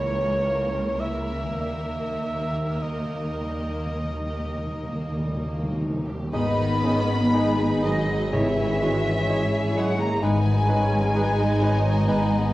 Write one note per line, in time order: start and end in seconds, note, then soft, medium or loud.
0.00 1.56 C#2 medium
0.00 1.56 C#3 medium
0.00 1.56 E3 medium
0.00 1.45 A#3 medium
0.00 6.08 A#3 medium
0.00 0.14 E4 medium
0.00 1.61 E4 medium
0.00 1.54 A#4 soft
0.00 6.12 A#4 medium
0.00 1.00 C#5 medium
0.00 1.02 C#5 medium
0.15 0.42 C#4 medium
0.42 0.71 A#3 medium
0.71 1.00 C#4 soft
1.00 1.30 E4 medium
1.00 1.58 E5 medium
1.00 1.60 E5 medium
1.30 1.60 C#4 medium
1.42 5.32 D#3 medium
1.46 5.36 A#3 soft
1.51 5.41 G4 soft
1.55 6.11 D#3 medium
1.55 5.45 A#4 soft
1.55 2.79 E5 medium
1.60 6.08 D#2 medium
1.60 1.69 D#3 soft
1.60 1.89 G3 medium
1.60 2.84 E5 medium
1.79 1.86 D#3 soft
1.91 2.22 A#3 soft
1.97 2.05 D#3 soft
2.06 2.14 D#3 soft
2.16 2.24 D#3 soft
2.21 2.52 D#4 soft
2.34 2.42 D#3 soft
2.51 2.60 D#3 soft
2.51 2.82 G4 soft
2.61 2.68 D#3 soft
2.69 2.77 D#3 soft
2.78 2.86 D#3 soft
2.78 3.11 D#4 soft
2.78 5.77 D#5 soft
2.82 5.78 D#5 medium
2.87 2.95 D#3 soft
2.96 3.04 D#3 soft
3.05 3.13 D#3 soft
3.10 3.22 D#3 soft
3.10 3.41 A#3 soft
3.23 3.31 D#3 soft
3.32 3.40 D#3 soft
3.39 3.49 D#3 soft
3.39 3.70 G3 soft
3.50 3.57 D#3 soft
3.58 3.66 D#3 soft
3.67 3.75 D#3 soft
3.67 4.00 A#3 medium
3.76 3.84 D#3 soft
3.85 3.93 D#3 medium
3.94 4.02 D#3 soft
3.99 4.27 D#4 soft
4.03 4.11 D#3 medium
4.12 4.20 D#3 medium
4.21 4.29 D#3 medium
4.28 4.37 D#3 medium
4.28 4.59 G4 medium
4.39 4.46 D#3 medium
4.47 4.56 D#3 medium
4.57 4.65 D#3 medium
4.57 4.89 D#4 soft
4.66 4.73 D#3 medium
4.74 4.82 D#3 medium
4.83 4.91 D#3 medium
4.88 5.18 A#3 medium
4.92 5.01 D#3 medium
5.02 5.09 D#3 medium
5.10 5.18 D#3 medium
5.17 5.27 D#3 medium
5.17 5.48 G3 medium
5.28 5.36 D#3 medium
5.37 5.44 D#3 medium
5.46 5.52 D#3 medium
5.46 5.77 A#3 soft
5.54 5.62 D#3 medium
5.63 5.71 D#3 medium
5.72 5.80 D#3 medium
5.76 6.05 D#4 medium
5.81 5.88 D#3 medium
5.89 5.96 D#3 medium
5.98 6.05 D#3 medium
6.05 6.13 D#3 loud
6.05 6.32 G4 medium
6.14 6.21 D#3 medium
6.23 6.30 D#3 medium
6.32 10.18 G#1 medium
6.32 8.33 G#2 medium
6.32 7.30 D#3 medium
6.32 6.49 G#3 medium
6.32 10.19 G#3 medium
6.32 7.80 B3 loud
6.32 6.49 D#4 medium
6.32 6.80 D#4 medium
6.32 8.29 D#4 medium
6.32 7.30 B4 medium
6.32 7.30 D#5 medium
6.32 6.50 D#5 medium
6.32 7.80 B5 loud
6.60 8.08 D#3 medium
6.84 7.01 G#3 medium
6.84 7.84 G#3 medium
6.84 7.34 C#4 medium
6.84 7.00 D#4 medium
6.84 7.01 D#5 medium
7.10 7.59 D#4 medium
7.34 7.84 G#3 medium
7.34 7.50 G#3 medium
7.34 7.51 D#4 medium
7.34 8.31 D#4 medium
7.34 8.31 G#4 medium
7.34 8.33 B4 medium
7.34 8.38 B4 medium
7.34 7.50 D#5 medium
7.60 8.37 D#4 medium
7.83 8.33 D#3 medium
7.83 8.32 F#3 medium
7.83 8.00 G#3 medium
7.83 8.81 G#3 medium
7.83 8.00 D#4 medium
7.83 7.99 D#5 medium
7.83 8.33 D#5 medium
8.09 8.37 D#3 medium
8.32 9.73 G#2 loud
8.32 10.21 G#2 medium
8.32 9.29 E3 medium
8.32 9.77 E3 medium
8.32 8.49 G#3 medium
8.32 10.22 C#4 medium
8.32 8.81 E4 medium
8.32 8.49 E4 medium
8.32 9.27 G#4 medium
8.32 9.27 C#5 medium
8.32 8.49 C#5 medium
8.32 9.76 E5 loud
8.32 9.77 E5 loud
8.58 9.99 E3 medium
8.80 8.96 G#3 medium
8.80 9.76 G#3 medium
8.80 8.98 E4 medium
8.80 9.28 F#4 medium
8.80 8.98 C#5 medium
9.06 9.53 E4 medium
9.29 9.45 G#3 medium
9.29 10.21 G#3 medium
9.29 10.22 E4 medium
9.29 9.45 E4 medium
9.29 10.22 G#4 medium
9.29 10.22 C#5 medium
9.29 10.26 C#5 medium
9.29 9.46 C#5 medium
9.54 10.26 E4 medium
9.76 10.00 F#3 medium
9.76 9.93 G#3 medium
9.76 10.67 G#3 medium
9.76 9.93 E4 medium
9.76 9.93 C#5 medium
9.76 9.99 F#5 loud
9.76 10.00 F#5 medium
9.99 10.26 E3 medium
9.99 10.22 A#3 medium
9.99 10.22 A#5 loud
9.99 10.23 A#5 medium
10.22 12.53 G#1 medium
10.22 12.07 G#2 medium
10.22 12.04 G#3 loud
10.22 12.53 G#3 loud
10.22 10.39 G#3 medium
10.22 12.53 B3 medium
10.22 12.53 D#4 medium
10.22 10.67 D#4 medium
10.22 10.39 D#4 medium
10.22 11.14 B4 medium
10.22 10.39 B4 medium
10.22 12.53 G#5 loud
10.45 11.84 D#3 medium
10.68 11.60 G#3 medium
10.68 10.85 G#3 medium
10.68 11.15 C#4 medium
10.68 10.84 D#4 medium
10.68 10.84 B4 medium
10.92 11.37 D#4 medium
11.14 11.32 G#3 medium
11.14 11.31 D#4 medium
11.14 12.07 D#4 medium
11.14 12.53 B4 medium
11.14 11.61 B4 medium
11.14 11.32 B4 medium
11.14 12.53 D#5 medium
11.38 12.53 D#4 medium
11.61 12.30 G#3 medium
11.61 11.78 G#3 medium
11.61 11.78 D#4 medium
11.61 11.79 B4 medium
11.61 12.07 C#5 medium
11.85 12.52 D#3 medium
12.07 12.53 G#2 medium
12.07 12.25 G#3 medium
12.07 12.53 B3 medium
12.07 12.23 D#4 medium
12.07 12.52 D#4 medium
12.07 12.53 B4 medium
12.07 12.25 B4 medium
12.31 12.53 G#3 medium